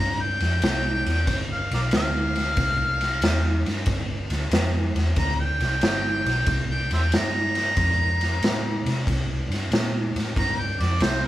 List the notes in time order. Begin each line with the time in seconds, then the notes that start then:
Already playing: G2
0.00 A#5
0.22 G5
0.40 F2, snare, ride
0.62 C2, snare, ride
1.05 E2, snare, ride
1.27 G1, kick, snare, ride
1.52 F5
1.71 B1 A#4 D5 F5, snare, ride
1.91 D2, snare, ride
1.97 F5
2.36 snare, ride
2.57 C2, kick, snare, ride
3.01 snare, ride
3.22 E2, snare, ride
3.65 G2, snare, ride
3.86 G1, kick, snare, ride
4.30 D2, snare, ride
4.50 F2, snare, ride
4.95 E2, snare, ride
5.16 D2 A#5, kick, snare, ride
5.40 G5
5.60 C2, snare, ride
5.81 G1, snare, ride
6.25 B1, snare, ride
6.46 C2, kick, snare, ride
6.71 G5
6.91 E2 C5 E5 G5, snare, ride
7.12 G2, snare, ride
7.16 A#5
7.55 snare, ride
7.77 F2, kick, snare, ride
8.21 snare, ride
8.41 A2, snare, ride
8.85 C3, snare, ride
9.07 C2, kick, snare, ride
9.49 G2, snare, ride
9.71 A#2, snare, ride
10.16 A2, snare, ride
10.36 G2 A#5, kick, snare, ride
10.60 G5
10.79 F2 D5, snare, ride
11.00 C2 C5, snare, ride